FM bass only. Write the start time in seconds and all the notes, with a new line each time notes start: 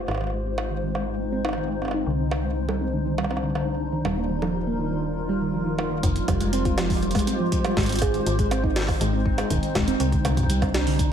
0.08 G#1
2.07 C2
4.05 D#1
6.03 F1
6.28 F1
7.77 G#1
8.26 G#1
9.01 G#1
9.50 D#1
9.75 D#1
10.00 C2
10.25 C2